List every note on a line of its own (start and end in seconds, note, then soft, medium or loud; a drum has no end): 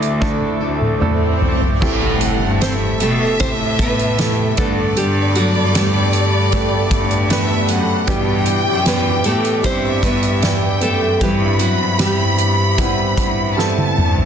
0.00 0.57 D2 medium
0.00 1.82 A2 medium
0.00 0.20 A3 medium
0.00 0.21 A3 soft
0.00 0.20 D4 soft
0.00 0.20 D4 medium
0.00 0.21 E4 medium
0.00 0.21 E4 soft
0.00 1.39 E4 medium
0.00 0.18 F#4 medium
0.00 0.22 A4 medium
0.00 1.79 A4 medium
0.00 1.79 E5 medium
0.00 1.78 D6 medium
0.00 closed hi-hat soft
0.00 swell medium
0.20 0.61 D3 medium
0.20 0.97 A3 medium
0.20 0.61 A3 medium
0.20 0.97 D4 medium
0.20 0.61 D4 medium
0.20 0.97 E4 medium
0.20 0.61 E4 medium
0.20 0.98 A4 medium
0.20 0.59 A4 medium
0.20 kick medium
0.20 high tom soft
0.42 high tom soft
0.60 1.38 D2 medium
0.60 1.82 D4 soft
0.60 1.82 E4 soft
0.60 1.82 A4 medium
0.81 mid tom medium
1.00 1.77 A3 medium
1.00 1.77 D4 medium
1.00 1.78 E4 medium
1.00 1.78 A4 medium
1.00 mid tom medium
1.42 1.79 G2 medium
1.42 floor tom medium
1.62 floor tom medium
1.81 2.97 A2 medium
1.81 2.38 A2 loud
1.81 2.97 E3 medium
1.81 2.57 A3 medium
1.81 3.03 A3 medium
1.81 2.57 C4 medium
1.81 3.01 C4 medium
1.81 2.57 E4 medium
1.81 3.00 E4 medium
1.81 2.58 G4 medium
1.81 3.00 G4 medium
1.81 8.04 A4 medium
1.81 2.58 A4 medium
1.81 2.57 F#5 medium
1.81 8.04 A5 medium
1.81 kick medium
1.81 crash medium
1.81 impact medium
2.21 closed hi-hat medium
2.42 2.97 G2 medium
2.61 3.36 A3 medium
2.61 2.73 C4 medium
2.61 3.36 E4 medium
2.61 3.37 G4 medium
2.61 3.37 A4 medium
2.61 3.36 C5 medium
2.61 2.73 C5 medium
2.61 4.58 E5 loud
2.61 snare medium
2.61 closed hi-hat medium
3.00 3.38 B2 medium
3.00 3.39 A3 medium
3.00 3.40 E4 soft
3.00 3.40 G4 soft
3.00 3.40 A4 medium
3.00 closed hi-hat medium
3.39 4.54 A2 medium
3.39 4.15 C3 medium
3.39 4.14 A3 medium
3.39 4.18 A3 medium
3.39 3.52 C4 medium
3.39 4.15 E4 medium
3.39 4.19 E4 medium
3.39 4.15 G4 medium
3.39 4.20 G4 medium
3.39 4.15 A4 medium
3.39 3.51 C5 loud
3.39 kick medium
3.39 closed hi-hat medium
3.79 4.55 B3 medium
3.79 4.58 B4 loud
3.79 kick medium
3.79 closed hi-hat medium
3.99 closed hi-hat soft
4.18 4.58 C3 medium
4.18 4.55 A3 medium
4.18 4.58 A3 medium
4.18 4.58 E4 medium
4.18 4.58 G4 medium
4.18 4.59 G4 medium
4.18 4.57 A4 medium
4.18 snare loud
4.18 closed hi-hat medium
4.57 5.71 G2 medium
4.57 4.94 G2 medium
4.57 5.71 D3 medium
4.57 8.07 D3 soft
4.57 5.68 A3 medium
4.57 6.51 A3 soft
4.57 4.95 A3 medium
4.57 5.69 B3 medium
4.57 6.52 B3 medium
4.57 5.69 D4 medium
4.57 6.53 D4 medium
4.57 4.94 A4 medium
4.57 5.69 A4 medium
4.57 5.69 B4 medium
4.57 7.30 D5 loud
4.57 8.05 B5 medium
4.57 kick loud
4.57 closed hi-hat medium
4.61 6.54 G2 medium
4.97 5.52 G2 loud
4.97 5.34 G3 medium
4.97 5.35 G4 loud
4.97 closed hi-hat medium
5.35 5.74 F#3 medium
5.35 5.72 F#4 medium
5.35 closed hi-hat medium
5.56 6.88 G2 loud
5.74 7.27 G3 medium
5.74 6.48 A3 medium
5.74 6.49 B3 medium
5.74 6.49 D4 medium
5.74 6.73 G4 medium
5.74 6.49 G4 medium
5.74 6.49 A4 medium
5.74 snare loud
5.74 closed hi-hat loud
6.13 closed hi-hat medium
6.52 7.28 A3 medium
6.52 7.26 A3 medium
6.52 7.26 B3 medium
6.52 7.30 B3 medium
6.52 7.27 D4 medium
6.52 7.31 D4 medium
6.52 7.27 G4 medium
6.52 7.31 G4 medium
6.52 7.27 A4 medium
6.52 kick medium
6.52 closed hi-hat medium
6.73 7.26 F#4 medium
6.91 7.65 G2 loud
6.91 kick medium
6.91 closed hi-hat medium
7.11 closed hi-hat medium
7.29 8.07 A3 medium
7.29 8.04 A3 medium
7.29 8.08 B3 medium
7.29 8.04 B3 medium
7.29 8.09 D4 medium
7.29 8.04 D4 medium
7.29 8.05 G4 medium
7.29 8.09 G4 medium
7.29 8.05 B4 loud
7.29 7.69 E5 loud
7.29 snare loud
7.29 closed hi-hat medium
7.68 8.05 F#2 medium
7.68 8.08 F#5 loud
7.68 closed hi-hat medium
8.07 8.62 G2 loud
8.07 9.21 B2 medium
8.07 9.68 E3 medium
8.07 8.82 G3 medium
8.07 8.82 B3 medium
8.07 10.43 B3 medium
8.07 8.82 D4 medium
8.07 9.64 D4 medium
8.07 8.82 E4 medium
8.07 11.18 G4 medium
8.07 8.82 G4 medium
8.07 9.65 G4 loud
8.07 14.25 E5 medium
8.07 9.60 G5 loud
8.07 11.18 D6 medium
8.07 kick medium
8.07 closed hi-hat medium
8.46 closed hi-hat medium
8.66 9.21 F#2 loud
8.85 9.60 E3 medium
8.85 9.60 B3 medium
8.85 9.23 B3 medium
8.85 9.60 D4 medium
8.85 9.60 E4 medium
8.85 9.61 G4 medium
8.85 9.23 B4 loud
8.85 snare loud
8.85 closed hi-hat loud
9.24 9.61 A2 medium
9.24 9.63 A3 medium
9.24 9.65 A4 loud
9.24 closed hi-hat medium
9.45 closed hi-hat soft
9.63 10.78 G2 loud
9.63 10.38 G3 medium
9.63 12.77 G3 medium
9.63 10.02 C4 medium
9.63 10.39 D4 medium
9.63 10.42 D4 medium
9.63 10.39 E4 medium
9.63 10.39 G4 medium
9.63 10.44 G4 medium
9.63 10.03 C5 loud
9.63 10.43 E5 loud
9.63 kick medium
9.63 closed hi-hat medium
10.03 10.79 B3 medium
10.03 10.85 B4 loud
10.03 kick medium
10.03 closed hi-hat medium
10.23 closed hi-hat soft
10.42 11.17 E3 medium
10.42 11.22 B3 medium
10.42 11.18 B3 medium
10.42 11.22 D4 medium
10.42 11.18 D4 medium
10.42 11.18 E4 medium
10.42 11.23 G4 medium
10.42 11.18 G4 medium
10.42 11.21 G5 loud
10.42 snare loud
10.42 closed hi-hat medium
10.81 11.18 F#2 medium
10.81 11.19 A3 medium
10.81 11.21 A4 medium
10.81 closed hi-hat medium
11.20 12.78 G2 medium
11.20 11.76 G2 loud
11.20 12.35 G2 medium
11.20 14.25 E3 medium
11.20 11.95 E3 medium
11.20 11.59 G3 medium
11.20 11.96 B3 medium
11.20 11.96 C4 medium
11.20 12.78 C4 medium
11.20 11.96 E4 medium
11.20 12.79 E4 medium
11.20 11.60 G4 medium
11.20 11.96 B4 medium
11.20 12.78 B4 medium
11.20 13.58 B5 loud
11.20 kick loud
11.20 closed hi-hat medium
11.59 11.98 F#3 medium
11.59 11.97 F#4 medium
11.59 closed hi-hat medium
11.80 13.14 G2 medium
11.98 12.74 G3 medium
11.98 13.55 G3 medium
11.98 12.74 B3 medium
11.98 12.74 C4 medium
11.98 12.75 E4 medium
11.98 13.54 G4 medium
11.98 12.75 G4 medium
11.98 snare loud
11.98 closed hi-hat medium
12.38 closed hi-hat medium
12.77 13.57 G3 medium
12.77 13.54 G3 medium
12.77 13.54 B3 medium
12.77 13.58 C4 medium
12.77 13.54 C4 medium
12.77 13.59 E4 medium
12.77 13.55 E4 medium
12.77 13.58 B4 medium
12.77 13.55 F#5 medium
12.77 kick medium
12.77 closed hi-hat medium
13.17 13.94 G2 medium
13.17 kick medium
13.17 closed hi-hat medium
13.57 14.25 G3 medium
13.57 14.25 B3 medium
13.57 14.25 C4 medium
13.57 14.25 E4 medium
13.57 14.25 A4 medium
13.57 14.25 B4 medium
13.57 14.25 A5 loud
13.57 snare medium
13.78 high tom medium
13.98 14.25 G2 medium
13.98 mid tom medium
14.18 floor tom medium